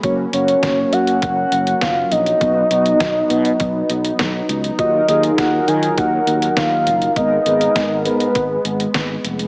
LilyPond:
<<
  \new Staff \with { instrumentName = "Soft synth lead" } { \time 4/4 \key fis \major \tempo 4 = 101 cis''8 cis''4 fis''8 fis''4 eis''8 dis''8~ | dis''2.~ dis''8 r8 | dis''8 dis''8 fis''8 gis''8 fis''4 eis''4 | dis''4. b'4. r4 | }
  \new Staff \with { instrumentName = "Analog polysynth" } { \time 4/4 \key fis \major <ais cis' fis'>8 <ais cis' fis'>4. r2 | <b dis' fis'>8 <b dis' fis'>4. r2 | <dis' eis' fis'>8 <dis' eis' gis'>4. r2 | <b gis' ais'>8 <b gis' ais'>4. r2 | }
  \new Staff \with { instrumentName = "Analog synth pad" } { \time 4/4 \key fis \major << { cis'1 | <b dis'>1 | <dis fis ais'>1 | b1 | } \\ { fis1~ | fis1 | r1 | gis1 | } >> }
  \new Staff \with { instrumentName = "Fretless electric bass" } { \clef bass \time 4/4 \key fis \major fis,,8 fis,,8 fis,,8 fis,8 fis,,8 fis,,8 fis,,8 ais,,8 | b,,8 b,,8 b,,8 b,8 b,,8 b,,8 b,,8 cis,8 | dis,8 dis,8 dis,8 dis8 dis,8 dis,8 dis,8 fis,,8 | gis,,8 gis,,8 gis,,8 gis,8 gis,,8 gis,,8 gis,,8 eis,,8 | }
  \new DrumStaff \with { instrumentName = "Drums" } \drummode { \time 4/4 <hh bd>8 hh16 hh16 <hh bd sn>8 hh16 hh16 <hh bd>8 hh16 hh16 <hh bd sn>8 hh16 hh16 | <hh bd>8 hh16 hh16 <hh bd sn>8 hh16 hh16 <hh bd>8 hh16 hh16 <hh bd sn>8 hh16 hh16 | <hh bd>8 hh16 hh16 <hh bd sn>8 hh16 hh16 <hh bd>8 hh16 hh16 <hh bd sn>8 hh16 hh16 | <hh bd>8 hh16 hh16 <hh bd sn>8 hh16 hh16 <hh bd>8 hh16 hh16 <hh bd sn>8 hh16 hh16 | }
>>